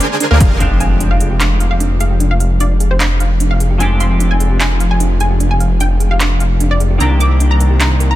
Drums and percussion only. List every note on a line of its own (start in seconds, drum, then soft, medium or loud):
0.00 closed hi-hat medium
0.20 closed hi-hat medium
0.40 kick loud
0.40 closed hi-hat medium
0.60 closed hi-hat medium
0.80 closed hi-hat medium
1.00 closed hi-hat medium
1.20 closed hi-hat medium
1.40 clap medium
1.40 closed hi-hat medium
1.60 closed hi-hat medium
1.80 closed hi-hat medium
2.00 closed hi-hat medium
2.20 closed hi-hat medium
2.40 closed hi-hat medium
2.60 closed hi-hat medium
2.80 closed hi-hat medium
3.00 clap medium
3.00 closed hi-hat medium
3.20 closed hi-hat medium
3.40 closed hi-hat medium
3.60 closed hi-hat medium
3.80 closed hi-hat medium
4.00 closed hi-hat medium
4.20 closed hi-hat medium
4.40 closed hi-hat medium
4.60 clap medium
4.60 closed hi-hat medium
4.80 closed hi-hat medium
5.00 closed hi-hat medium
5.20 closed hi-hat medium
5.40 closed hi-hat medium
5.60 closed hi-hat medium
5.80 closed hi-hat medium
6.00 closed hi-hat medium
6.20 clap medium
6.20 closed hi-hat medium
6.40 closed hi-hat medium
6.60 closed hi-hat medium
6.80 closed hi-hat medium
7.00 closed hi-hat medium
7.20 closed hi-hat medium
7.40 closed hi-hat medium
7.60 closed hi-hat medium
7.80 clap medium
7.80 closed hi-hat medium
8.00 closed hi-hat medium